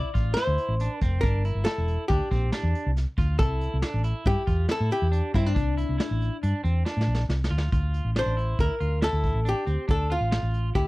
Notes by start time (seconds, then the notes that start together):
Already playing: D5
0.14 A1 F4, kick, closed hi-hat
0.34 E4 C5, snare, closed hi-hat
0.47 D2
0.58 closed hi-hat
0.68 A1
0.80 D4, closed hi-hat
0.99 F1 C4 A#4, kick, snare, closed hi-hat
1.21 G1 D4 A#4, kick, closed hi-hat
1.45 E4, closed hi-hat
1.55 G1
1.65 E4 A4, snare, closed hi-hat
1.78 E1
1.88 closed hi-hat
2.08 D2 D4 G4, kick, closed hi-hat
2.31 A#1 C4, kick, closed hi-hat
2.52 D4, snare, closed hi-hat
2.63 E2
2.75 closed hi-hat
2.86 C2
2.97 snare, closed hi-hat
3.17 D2 F4, kick, closed hi-hat
3.39 C2 E4 A4, kick, closed hi-hat
3.61 closed hi-hat
3.74 C2
3.82 D4, snare, closed hi-hat
3.94 A1
4.04 E4, closed hi-hat
4.25 G2 G4, kick, closed hi-hat
4.47 E2 F4, kick, closed hi-hat
4.69 E4 A4, snare, closed hi-hat
4.80 A2
4.91 G4, closed hi-hat
5.02 E2
5.12 D4, closed hi-hat
5.34 G2 C4 E4, kick, closed hi-hat
5.46 D4
5.55 C2 D4, kick, closed hi-hat
5.77 E4, closed hi-hat
5.89 C2
5.98 E4, snare, closed hi-hat
6.11 A1
6.22 closed hi-hat
6.43 G2 D4, closed hi-hat
6.64 E2 C4, closed hi-hat
6.85 D4, snare
6.97 A2
7.01 snare
7.08 A#1
7.14 snare
7.29 C2, snare
7.44 snare
7.51 D2 F4
7.58 snare
7.72 D2 F4, kick, closed hi-hat
7.94 closed hi-hat
8.05 A1
8.16 D4 C5, snare, closed hi-hat
8.26 A1
8.37 E4, closed hi-hat
8.59 D2 A#4, kick, closed hi-hat
8.80 D2 F4, closed hi-hat
9.02 E4 A4, snare, closed hi-hat
9.13 D2
9.24 kick, closed hi-hat
9.34 A1
9.45 D4 G4, closed hi-hat
9.66 D2 C4, closed hi-hat
9.88 D2 D4 A4, kick, closed hi-hat
10.10 F4, closed hi-hat
10.20 A1
10.31 F4, snare, closed hi-hat
10.43 A1
10.54 closed hi-hat
10.75 D2 E4 G4, kick, closed hi-hat